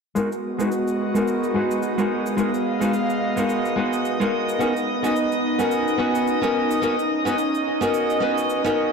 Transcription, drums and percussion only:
0.16 cabasa soft
0.32 cabasa soft
0.60 cabasa medium
0.72 cabasa soft
0.88 cabasa soft
1.16 cabasa medium
1.28 cabasa soft
1.44 cabasa soft
1.71 cabasa medium
1.83 cabasa soft
1.99 cabasa soft
2.26 cabasa medium
2.38 cabasa soft
2.54 cabasa soft
2.82 cabasa medium
2.94 cabasa soft
3.10 cabasa soft
3.37 cabasa medium
3.49 cabasa medium
3.65 cabasa soft
3.93 cabasa medium
4.05 cabasa soft
4.21 cabasa soft
4.49 cabasa medium
4.61 cabasa soft
4.77 cabasa soft
5.04 cabasa medium
5.16 cabasa medium
5.32 cabasa soft
5.59 cabasa medium
5.71 cabasa medium
5.88 cabasa soft
6.15 cabasa medium
6.27 cabasa soft
6.43 cabasa soft
6.71 cabasa medium
6.83 cabasa soft
6.99 cabasa soft
7.27 cabasa medium
7.38 cabasa soft
7.55 cabasa soft
7.82 cabasa medium
7.94 cabasa medium
8.10 cabasa soft
8.38 cabasa medium
8.50 cabasa soft
8.66 cabasa soft

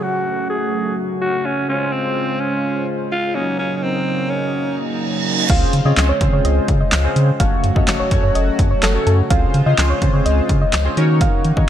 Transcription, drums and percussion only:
5.50 kick loud
5.50 closed hi-hat loud
5.50 crash loud
5.73 closed hi-hat medium
5.97 snare loud
5.97 clap loud
5.97 closed hi-hat medium
6.21 kick loud
6.21 closed hi-hat medium
6.45 closed hi-hat loud
6.68 kick loud
6.68 closed hi-hat medium
6.92 snare loud
6.92 clap loud
6.92 closed hi-hat medium
7.16 closed hi-hat medium
7.40 kick loud
7.40 closed hi-hat loud
7.64 closed hi-hat medium
7.76 kick loud
7.88 snare loud
7.88 clap loud
7.88 closed hi-hat medium
8.11 kick loud
8.11 closed hi-hat medium
8.35 closed hi-hat loud
8.59 kick loud
8.59 closed hi-hat medium
8.83 snare loud
8.83 clap loud
8.83 closed hi-hat medium
9.07 closed hi-hat medium
9.30 kick loud
9.30 closed hi-hat loud
9.54 closed hi-hat medium
9.78 snare loud
9.78 clap loud
9.78 closed hi-hat medium
10.02 kick loud
10.02 closed hi-hat medium
10.26 closed hi-hat loud
10.49 kick loud
10.49 closed hi-hat medium
10.73 snare loud
10.73 clap loud
10.73 closed hi-hat medium
10.97 closed hi-hat medium
11.21 kick loud
11.21 closed hi-hat loud
11.45 closed hi-hat medium
11.57 kick loud

